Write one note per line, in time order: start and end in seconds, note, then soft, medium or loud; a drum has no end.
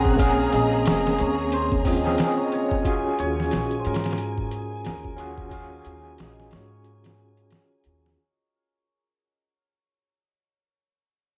0.00 0.50 A#1 medium
0.00 0.15 C4 loud
0.00 0.15 C#4 medium
0.00 0.16 G#4 loud
0.00 2.23 G#4 medium
0.00 2.80 G#4 medium
0.00 2.36 A#4 medium
0.00 1.26 C5 medium
0.00 0.23 D#5 loud
0.00 0.13 F#5 medium
0.00 2.80 A#5 medium
0.05 kick medium
0.13 1.81 A#3 medium
0.13 0.25 F#5 medium
0.19 1.82 C#4 medium
0.19 1.83 G#4 medium
0.19 2.17 F5 loud
0.19 kick loud
0.19 closed hi-hat medium
0.52 0.82 A#1 medium
0.52 1.86 D#5 loud
0.52 closed hi-hat medium
0.85 1.16 F1 medium
0.85 snare loud
0.85 closed hi-hat medium
1.07 snare medium
1.18 2.17 D#2 loud
1.18 1.59 C#5 medium
1.18 closed hi-hat medium
1.52 1.62 C5 loud
1.52 closed hi-hat medium
1.72 kick loud
1.84 2.00 C4 medium
1.84 2.00 C#4 medium
1.84 2.01 F4 medium
1.84 2.27 D#5 medium
1.84 kick loud
1.84 open hi-hat medium
2.04 2.23 C4 medium
2.04 2.23 C#4 medium
2.04 2.24 G#4 loud
2.04 snare medium
2.17 4.39 F5 medium
2.17 snare loud
2.17 closed hi-hat medium
2.27 2.44 D#5 medium
2.37 2.53 C#5 medium
2.44 4.82 D#5 medium
2.52 3.19 C#5 medium
2.52 closed hi-hat medium
2.71 kick medium
2.82 5.14 C#4 medium
2.82 5.15 F4 medium
2.82 5.15 F#4 medium
2.82 8.14 G#5 medium
2.82 kick loud
2.82 closed hi-hat medium
2.87 5.16 G#4 loud
3.19 3.49 D#2 loud
3.19 3.85 C#5 loud
3.19 closed hi-hat medium
3.40 snare medium
3.51 3.83 A#1 medium
3.51 snare loud
3.51 closed hi-hat medium
3.71 closed hi-hat soft
3.79 6.43 C5 medium
3.85 4.83 G#2 loud
3.85 4.87 A#4 medium
3.85 closed hi-hat medium
3.94 snare medium
3.94 closed hi-hat medium
4.04 snare medium
4.04 closed hi-hat medium
4.11 snare medium
4.11 closed hi-hat medium
4.18 closed hi-hat medium
4.38 kick loud
4.51 7.58 G#4 medium
4.51 closed hi-hat medium
4.85 5.83 D#2 medium
4.85 7.70 A#4 medium
4.85 snare loud
4.85 closed hi-hat medium
5.04 kick medium
5.16 5.47 C#4 medium
5.16 5.48 F4 medium
5.16 5.48 F#4 medium
5.16 5.49 G#4 loud
5.16 5.59 F#5 medium
5.16 closed hi-hat medium
5.38 kick loud
5.49 7.14 C#4 medium
5.49 7.15 F4 medium
5.49 7.16 F#4 medium
5.49 7.75 F5 loud
5.49 kick loud
5.49 closed hi-hat medium
5.54 7.16 G#4 medium
5.85 6.15 D#2 loud
5.85 closed hi-hat medium
6.18 6.49 A#1 medium
6.18 6.30 D#5 medium
6.18 snare loud
6.18 closed hi-hat medium
6.40 snare medium
6.51 7.50 G#2 loud
6.51 9.09 C#5 medium
6.51 snare loud
6.51 closed hi-hat medium
6.84 closed hi-hat medium
7.04 snare loud
7.04 closed hi-hat medium
7.37 closed hi-hat medium
7.51 snare loud
7.51 closed hi-hat medium
7.84 8.15 D#2 loud
7.84 closed hi-hat medium
8.06 snare soft